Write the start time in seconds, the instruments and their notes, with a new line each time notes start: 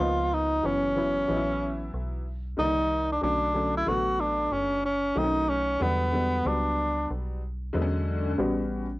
Already playing: tenor saxophone F4
0.00 fm bass C#2, upright piano F3 A#3 B3 D#4
0.34 tenor saxophone D#4
0.63 fm bass F#1, upright piano E3 F#3 B3 C#4, tenor saxophone C#4
0.96 upright piano E3 F#3 B3 E4
1.28 fm bass A1, upright piano E3 F#3 B3 D#4
1.37 upright piano E4
1.94 fm bass B1
2.57 fm bass C2, upright piano D3 G3 A#3 D5, tenor saxophone D#4
2.64 upright piano D#3
3.12 tenor saxophone D4
3.21 fm bass B1, upright piano D3 F#3 A3 C#4, tenor saxophone D4
3.54 upright piano D3 F#3 A3 C#4
3.77 tenor saxophone E4
3.86 fm bass A1, upright piano D3 F#3 A3 B3, tenor saxophone F#4
4.20 tenor saxophone D4
4.52 fm bass F#1, tenor saxophone C#4
4.86 tenor saxophone C#4
5.16 fm bass B1, upright piano D#3 F#3 A3 C4, tenor saxophone D#4
5.24 upright piano C#4
5.50 tenor saxophone C#4
5.80 fm bass E2, upright piano D3 F#3 G3 B3, tenor saxophone B3
6.12 upright piano D3 F#3 G3 B3
6.45 fm bass C#2, upright piano F#3 G3 B3 D4, tenor saxophone D4
7.10 fm bass B1
7.73 fm bass E2, upright piano D3 F#3 G#3 B3
7.82 upright piano C#4
8.38 fm bass A1, upright piano G3 B3 C#4 F#4